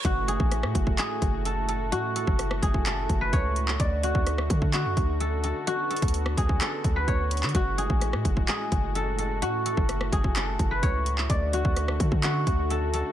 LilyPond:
<<
  \new Staff \with { instrumentName = "Guzheng" } { \time 4/4 \key fis \minor \tempo 4 = 128 fis'8 gis'4. gis'4 a'8 a'8 | fis'8 a'8 r8 gis'8 a'8. b'16 cis''4 | d''8 fis'4. fis'4 a'8 a'8 | fis'8 a'8 r8 gis'8 a'8. b'16 cis''4 |
fis'8 gis'4. gis'4 a'8 a'8 | fis'8 a'8 r8 gis'8 a'8. b'16 cis''4 | d''8 fis'4. fis'4 a'8 a'8 | }
  \new Staff \with { instrumentName = "Pipe organ" } { \time 4/4 \key fis \minor fis'1~ | fis'1~ | fis'1~ | fis'1~ |
fis'1~ | fis'1 | fis'1 | }
  \new Staff \with { instrumentName = "Pipe organ" } { \clef bass \time 4/4 \key fis \minor << { a1~ | a1 | a1 | b1 |
gis1 | a1~ | a1 | } \\ { a,1~ | a,1 | d1~ | d1 |
a,1~ | a,1 | d1 | } >> }
  \new Staff \with { instrumentName = "808-style bass" } { \clef bass \time 4/4 \key fis \minor fis,,8. a,,8 a,16 fis,,8 r8 fis,,4. | a,8. fis,,8. fis,,4 fis,,8 cis,4 | d,8. d,8. d8. fis,16 d,4~ d,16 r16 | r8. d,8. d,8 r8 d,8 d,8. d16 |
fis,,8. a,,8 a,16 fis,,8 r8 fis,,4. | a,8. fis,,8. fis,,4 fis,,8 cis,4 | d,8. d,8. d16 d8. d,4~ d,16 r16 | }
  \new DrumStaff \with { instrumentName = "Drums" } \drummode { \time 4/4 <hh bd>8 hh16 bd16 <hh ss>16 ss16 <hh bd>16 bd16 <hc hh>8 <hh bd>8 hh8 hh8 | hh8 hh16 bd16 <hh ss>16 ss16 <hh bd>16 bd16 <hc hh>8 <hh bd>8 <hh bd>8 hh16 hc16 | <hh bd>8 hh16 bd16 <hh ss>16 ss16 <hh bd>16 bd16 <hc hh>8 <hh bd>8 hh8 hh8 | hh8 hh32 hh32 <hh bd>32 hh32 hh16 ss16 <hh bd>16 bd16 <hc hh>8 <hh bd>8 <hh bd>8 <hh hho>32 hh32 <hc hh>32 hh32 |
<hh bd>8 hh16 bd16 <hh ss>16 ss16 <hh bd>16 bd16 <hc hh>8 <hh bd>8 hh8 hh8 | hh8 hh16 bd16 <hh ss>16 ss16 <hh bd>16 bd16 <hc hh>8 <hh bd>8 <hh bd>8 hh16 hc16 | <hh bd>8 hh16 bd16 <hh ss>16 ss16 <hh bd>16 bd16 <hc hh>8 <hh bd>8 hh8 hh8 | }
>>